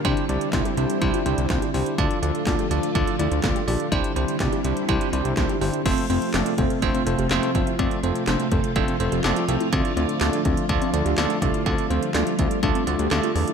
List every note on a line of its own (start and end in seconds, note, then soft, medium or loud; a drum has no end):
0.00 3.88 D3 medium
0.00 1.94 G3 medium
0.05 0.14 C2 loud
0.05 1.96 C4 medium
0.05 0.19 D4 loud
0.05 0.24 D4 loud
0.05 1.96 E4 medium
0.05 0.24 E4 loud
0.05 0.24 G4 loud
0.05 0.24 C5 loud
0.05 kick loud
0.05 closed hi-hat medium
0.17 closed hi-hat medium
0.29 0.38 C2 loud
0.29 0.49 D4 medium
0.29 0.49 E4 medium
0.29 0.49 G4 medium
0.29 0.49 D5 medium
0.29 closed hi-hat medium
0.41 closed hi-hat soft
0.53 0.62 C2 loud
0.53 0.73 D4 medium
0.53 0.73 E4 medium
0.53 0.60 F4 medium
0.53 0.73 G4 medium
0.53 0.73 C5 loud
0.53 kick loud
0.53 snare loud
0.53 clap loud
0.53 closed hi-hat medium
0.65 0.80 G4 medium
0.65 closed hi-hat medium
0.77 0.86 C2 medium
0.77 0.97 D4 medium
0.77 0.97 E4 medium
0.77 0.97 G4 medium
0.77 0.97 C5 medium
0.77 closed hi-hat medium
0.90 closed hi-hat medium
1.01 1.11 C2 loud
1.01 1.21 D4 loud
1.01 1.09 E4 medium
1.01 1.21 E4 loud
1.01 1.21 G4 loud
1.01 1.21 C5 loud
1.01 kick loud
1.01 closed hi-hat medium
1.14 1.21 F4 medium
1.14 closed hi-hat medium
1.26 1.35 C2 loud
1.26 1.45 D4 medium
1.26 1.40 E4 medium
1.26 1.45 E4 medium
1.26 1.45 G4 medium
1.26 1.45 C5 medium
1.26 closed hi-hat medium
1.38 1.47 C2 loud
1.38 closed hi-hat medium
1.50 1.59 C2 loud
1.50 1.69 D4 medium
1.50 1.69 E4 medium
1.50 1.57 F4 medium
1.50 1.69 G4 medium
1.50 1.69 C5 medium
1.50 kick loud
1.50 snare loud
1.50 clap loud
1.50 closed hi-hat medium
1.62 1.69 G4 medium
1.62 closed hi-hat medium
1.74 1.83 C2 loud
1.74 1.94 D4 medium
1.74 1.94 E4 medium
1.74 1.89 G4 medium
1.74 1.94 G4 medium
1.74 1.94 C5 loud
1.74 open hi-hat medium
1.86 closed hi-hat medium
1.98 2.07 D2 loud
1.98 3.90 F3 medium
1.98 3.90 A3 medium
1.98 2.13 D4 loud
1.98 2.18 D4 loud
1.98 3.90 F4 medium
1.98 2.18 F4 loud
1.98 2.18 A4 loud
1.98 2.18 D5 loud
1.98 kick loud
1.98 closed hi-hat medium
2.11 closed hi-hat medium
2.23 2.32 D2 loud
2.23 2.42 D4 medium
2.23 2.42 F4 medium
2.23 2.42 A4 medium
2.23 2.42 D5 medium
2.23 closed hi-hat medium
2.35 closed hi-hat soft
2.47 2.56 D2 loud
2.47 2.66 D4 medium
2.47 2.66 F4 medium
2.47 2.54 F4 medium
2.47 2.66 A4 medium
2.47 2.66 D5 loud
2.47 kick loud
2.47 snare loud
2.47 clap loud
2.47 closed hi-hat medium
2.59 2.73 G4 medium
2.59 closed hi-hat medium
2.71 2.80 D2 loud
2.71 2.90 D4 medium
2.71 2.90 F4 medium
2.71 2.90 A4 medium
2.71 2.90 D5 loud
2.71 closed hi-hat medium
2.83 closed hi-hat medium
2.95 3.04 D2 loud
2.95 3.15 D4 loud
2.95 3.02 E4 medium
2.95 3.15 F4 loud
2.95 3.15 A4 loud
2.95 3.15 D5 loud
2.95 kick loud
2.95 closed hi-hat medium
3.07 3.15 F4 medium
3.07 closed hi-hat medium
3.19 3.28 D2 loud
3.19 3.39 D4 medium
3.19 3.34 E4 medium
3.19 3.39 F4 medium
3.19 3.39 A4 medium
3.19 3.39 D5 medium
3.19 closed hi-hat medium
3.31 3.41 D2 loud
3.31 closed hi-hat medium
3.44 3.53 D2 loud
3.44 3.63 D4 medium
3.44 3.63 F4 medium
3.44 3.51 F4 medium
3.44 3.63 A4 medium
3.44 3.63 D5 loud
3.44 kick loud
3.44 snare loud
3.44 clap medium
3.44 closed hi-hat medium
3.56 3.63 G4 medium
3.56 closed hi-hat medium
3.68 3.77 A#1 medium
3.68 3.87 D4 medium
3.68 3.87 F4 medium
3.68 3.82 G4 medium
3.68 3.87 A4 medium
3.68 3.87 D5 loud
3.68 open hi-hat medium
3.80 closed hi-hat medium
3.92 4.01 C2 loud
3.92 5.84 D3 medium
3.92 5.84 G3 medium
3.92 5.84 C4 medium
3.92 4.11 D4 loud
3.92 4.06 D4 loud
3.92 4.11 E4 loud
3.92 5.84 E4 medium
3.92 4.11 G4 loud
3.92 4.11 C5 loud
3.92 kick loud
3.92 closed hi-hat medium
4.04 closed hi-hat medium
4.16 4.25 C2 loud
4.16 4.36 D4 medium
4.16 4.36 E4 medium
4.16 4.36 G4 medium
4.16 4.36 C5 loud
4.16 closed hi-hat medium
4.28 closed hi-hat soft
4.40 4.49 C2 loud
4.40 4.60 D4 medium
4.40 4.60 E4 medium
4.40 4.48 F4 medium
4.40 4.60 G4 medium
4.40 4.60 D5 loud
4.40 kick loud
4.40 snare loud
4.40 clap loud
4.40 closed hi-hat medium
4.52 4.67 G4 medium
4.52 closed hi-hat medium
4.64 4.74 C2 loud
4.64 4.84 D4 medium
4.64 4.84 E4 medium
4.64 4.84 G4 medium
4.64 4.84 C5 medium
4.64 closed hi-hat medium
4.77 closed hi-hat medium
4.89 4.98 C2 loud
4.89 5.08 D4 loud
4.89 4.96 E4 medium
4.89 5.08 E4 loud
4.89 5.08 G4 loud
4.89 5.08 C5 loud
4.89 kick loud
4.89 closed hi-hat medium
5.01 5.08 F4 medium
5.01 closed hi-hat medium
5.13 5.22 C2 loud
5.13 5.32 D4 medium
5.13 5.27 E4 medium
5.13 5.32 E4 medium
5.13 5.32 G4 medium
5.13 5.32 C5 loud
5.13 closed hi-hat medium
5.25 5.34 C2 medium
5.25 closed hi-hat medium
5.37 5.46 C2 loud
5.37 5.57 D4 medium
5.37 5.57 E4 medium
5.37 5.44 F4 medium
5.37 5.57 G4 medium
5.37 5.57 C5 loud
5.37 kick loud
5.37 snare loud
5.37 clap medium
5.37 closed hi-hat medium
5.49 5.57 G4 medium
5.49 closed hi-hat medium
5.61 5.70 G1 medium
5.61 5.81 D4 medium
5.61 5.81 E4 medium
5.61 5.81 G4 medium
5.61 5.76 G4 medium
5.61 5.81 C5 loud
5.61 open hi-hat medium
5.74 closed hi-hat medium
5.86 5.95 F1 loud
5.86 9.69 C3 medium
5.86 13.53 F3 medium
5.86 11.62 A3 medium
5.86 6.05 A3 loud
5.86 6.00 C4 medium
5.86 6.05 C4 loud
5.86 13.53 F4 medium
5.86 6.05 F4 loud
5.86 6.05 A4 loud
5.86 6.05 C5 loud
5.86 kick loud
5.86 closed hi-hat medium
5.86 crash loud
5.98 closed hi-hat medium
6.10 6.19 F1 loud
6.10 6.29 A3 medium
6.10 6.24 C4 medium
6.10 6.29 C4 medium
6.10 6.29 F4 medium
6.10 6.29 A4 medium
6.10 6.29 C5 loud
6.10 closed hi-hat medium
6.22 closed hi-hat soft
6.34 6.43 F1 loud
6.34 6.53 A3 medium
6.34 6.53 C4 medium
6.34 6.48 D4 medium
6.34 6.53 F4 medium
6.34 6.53 A4 medium
6.34 6.53 D5 loud
6.34 snare loud
6.34 clap loud
6.34 closed hi-hat medium
6.46 closed hi-hat medium
6.58 6.67 F1 loud
6.58 6.78 A3 medium
6.58 6.73 C4 medium
6.58 6.78 C4 medium
6.58 6.78 F4 medium
6.58 6.78 A4 medium
6.58 6.78 C5 medium
6.58 kick medium
6.58 closed hi-hat medium
6.70 closed hi-hat medium
6.82 6.91 F1 loud
6.82 7.02 A3 loud
6.82 7.02 C4 loud
6.82 6.90 D4 medium
6.82 7.02 F4 loud
6.82 7.02 A4 loud
6.82 7.02 C5 loud
6.82 kick medium
6.82 closed hi-hat medium
6.94 7.09 C4 medium
6.94 closed hi-hat medium
7.07 7.16 F1 loud
7.07 7.26 A3 medium
7.07 7.26 C4 medium
7.07 7.26 F4 medium
7.07 7.26 A4 medium
7.07 7.26 C5 loud
7.07 closed hi-hat medium
7.19 7.28 F1 loud
7.19 7.33 G4 medium
7.19 closed hi-hat medium
7.31 7.40 F1 loud
7.31 7.50 A3 loud
7.31 7.50 C4 loud
7.31 7.50 F4 loud
7.31 7.50 A4 loud
7.31 7.50 C5 loud
7.31 snare loud
7.31 clap medium
7.31 closed hi-hat medium
7.43 7.57 F4 medium
7.43 closed hi-hat medium
7.55 7.64 G1 loud
7.55 7.74 A3 medium
7.55 7.74 C4 medium
7.55 7.74 F4 medium
7.55 7.74 A4 medium
7.55 7.74 C5 loud
7.55 kick medium
7.55 closed hi-hat medium
7.67 7.74 E4 medium
7.67 closed hi-hat medium
7.79 7.88 F1 loud
7.79 7.99 A3 loud
7.79 7.94 C4 loud
7.79 7.99 C4 loud
7.79 7.98 F4 loud
7.79 7.99 A4 loud
7.79 7.99 D5 loud
7.79 kick loud
7.79 closed hi-hat medium
7.91 closed hi-hat medium
8.03 8.12 F1 loud
8.03 8.23 A3 medium
8.03 8.18 C4 medium
8.03 8.23 C4 medium
8.03 8.23 F4 medium
8.03 8.23 A4 medium
8.03 8.23 C5 medium
8.03 closed hi-hat medium
8.15 closed hi-hat soft
8.27 8.36 F1 loud
8.27 8.47 A3 medium
8.27 8.47 C4 medium
8.27 8.42 D4 medium
8.27 8.47 F4 medium
8.27 8.47 A4 medium
8.27 8.47 C5 loud
8.27 snare loud
8.27 clap loud
8.27 closed hi-hat medium
8.40 closed hi-hat medium
8.52 8.61 F1 loud
8.52 8.71 A3 medium
8.52 8.71 C4 medium
8.52 8.66 C4 medium
8.52 8.71 F4 medium
8.52 8.71 A4 medium
8.52 8.71 C5 medium
8.52 kick medium
8.52 closed hi-hat medium
8.64 closed hi-hat medium
8.76 8.85 F1 loud
8.76 8.95 A3 loud
8.76 8.95 C4 loud
8.76 8.83 D4 medium
8.76 8.95 F4 loud
8.76 8.95 A4 loud
8.76 8.95 C5 loud
8.76 kick medium
8.76 closed hi-hat medium
8.88 9.02 C4 medium
8.88 closed hi-hat medium
9.00 9.09 F1 loud
9.00 9.19 A3 medium
9.00 9.19 C4 medium
9.00 9.19 F4 medium
9.00 9.19 A4 medium
9.00 9.19 C5 loud
9.00 closed hi-hat medium
9.12 9.21 F1 medium
9.12 9.27 G4 medium
9.12 closed hi-hat medium
9.24 9.33 F1 loud
9.24 9.44 A3 loud
9.24 9.44 C4 loud
9.24 9.44 F4 loud
9.24 9.44 A4 loud
9.24 9.44 D5 loud
9.24 snare loud
9.24 clap medium
9.24 closed hi-hat medium
9.36 9.51 F4 medium
9.36 closed hi-hat medium
9.48 9.57 C2 medium
9.48 9.68 A3 medium
9.48 9.68 C4 medium
9.48 9.68 F4 medium
9.48 9.68 A4 medium
9.48 9.68 C5 medium
9.48 closed hi-hat medium
9.60 9.68 E4 medium
9.60 closed hi-hat medium
9.73 9.82 D2 loud
9.73 13.53 D3 medium
9.73 9.92 A3 loud
9.73 9.87 C4 loud
9.73 9.92 D4 loud
9.73 9.92 F4 loud
9.73 9.92 A4 loud
9.73 9.92 D5 loud
9.73 kick loud
9.73 closed hi-hat medium
9.85 closed hi-hat medium
9.97 10.06 D2 loud
9.97 10.16 A3 medium
9.97 10.11 C4 medium
9.97 10.16 D4 medium
9.97 10.16 F4 medium
9.97 10.16 A4 medium
9.97 10.16 D5 medium
9.97 closed hi-hat medium
10.09 closed hi-hat soft
10.21 10.30 D2 loud
10.21 10.40 A3 medium
10.21 10.40 D4 medium
10.21 10.36 D4 medium
10.21 10.40 F4 medium
10.21 10.40 A4 medium
10.21 10.40 D5 loud
10.21 snare loud
10.21 clap loud
10.21 closed hi-hat medium
10.33 closed hi-hat medium
10.45 10.54 D2 loud
10.45 10.65 A3 medium
10.45 10.60 C4 medium
10.45 10.65 D4 medium
10.45 10.65 F4 medium
10.45 10.65 A4 medium
10.45 10.65 D5 medium
10.45 kick medium
10.45 closed hi-hat medium
10.57 closed hi-hat medium
10.69 10.78 D2 loud
10.69 10.89 A3 loud
10.69 10.89 D4 loud
10.69 10.77 D4 medium
10.69 10.89 F4 loud
10.69 10.89 A4 loud
10.69 10.89 D5 loud
10.69 kick medium
10.69 closed hi-hat medium
10.82 10.96 C4 medium
10.82 closed hi-hat medium
10.94 11.03 D2 loud
10.94 11.13 A3 medium
10.94 11.13 D4 medium
10.94 11.13 F4 medium
10.94 11.13 A4 medium
10.94 11.13 D5 loud
10.94 closed hi-hat medium
11.06 11.15 D2 loud
11.06 11.20 G4 medium
11.06 closed hi-hat medium
11.18 11.27 D2 loud
11.18 11.37 A3 loud
11.18 11.37 D4 loud
11.18 11.37 F4 loud
11.18 11.37 A4 loud
11.18 11.37 D5 loud
11.18 snare loud
11.18 clap loud
11.18 closed hi-hat medium
11.30 11.44 F4 medium
11.30 closed hi-hat medium
11.42 11.51 C2 loud
11.42 11.61 A3 medium
11.42 11.61 D4 medium
11.42 11.61 F4 medium
11.42 11.61 A4 medium
11.42 11.61 D5 loud
11.42 kick medium
11.42 closed hi-hat medium
11.54 11.61 E4 medium
11.54 closed hi-hat medium
11.66 11.75 D2 loud
11.66 13.53 G3 medium
11.66 11.86 A3 loud
11.66 11.81 C4 loud
11.66 11.86 D4 loud
11.66 11.86 F4 loud
11.66 11.86 A4 loud
11.66 11.86 D5 loud
11.66 kick loud
11.66 closed hi-hat medium
11.78 closed hi-hat medium
11.90 11.99 D2 loud
11.90 12.10 A3 medium
11.90 12.05 C4 medium
11.90 12.10 D4 medium
11.90 12.10 F4 medium
11.90 12.10 A4 medium
11.90 12.10 C5 medium
11.90 closed hi-hat medium
12.03 closed hi-hat soft
12.14 12.24 D2 loud
12.14 12.34 A3 medium
12.14 12.29 D4 medium
12.14 12.34 D4 medium
12.14 12.34 F4 medium
12.14 12.34 A4 medium
12.14 12.34 D5 loud
12.14 snare loud
12.14 clap loud
12.14 closed hi-hat medium
12.27 closed hi-hat medium
12.39 12.48 D2 loud
12.39 12.58 A3 medium
12.39 12.53 C4 medium
12.39 12.58 D4 medium
12.39 12.58 F4 medium
12.39 12.58 A4 medium
12.39 12.58 D5 loud
12.39 kick medium
12.39 closed hi-hat medium
12.51 closed hi-hat medium
12.63 12.72 D2 loud
12.63 12.82 A3 loud
12.63 12.82 D4 loud
12.63 12.70 D4 medium
12.63 12.82 F4 loud
12.63 12.82 A4 loud
12.63 12.82 D5 loud
12.63 kick medium
12.63 closed hi-hat medium
12.75 12.89 C4 medium
12.75 closed hi-hat medium
12.87 12.96 D2 loud
12.87 13.07 A3 medium
12.87 13.07 D4 medium
12.87 13.07 F4 medium
12.87 13.06 A4 medium
12.87 13.06 D5 loud
12.87 closed hi-hat medium
12.99 13.08 D2 medium
12.99 13.14 G4 medium
12.99 closed hi-hat medium
13.11 13.20 D2 loud
13.11 13.31 A3 loud
13.11 13.31 D4 loud
13.11 13.31 F4 loud
13.11 13.31 A4 loud
13.11 13.31 D5 loud
13.11 snare loud
13.11 clap medium
13.11 closed hi-hat medium
13.23 13.38 F4 medium
13.23 closed hi-hat medium
13.35 13.45 E2 loud
13.35 13.53 A3 medium
13.35 13.53 D4 medium
13.35 13.53 F4 medium
13.35 13.53 A4 medium
13.35 13.53 D5 medium
13.35 open hi-hat medium
13.47 13.53 E4 medium
13.47 closed hi-hat medium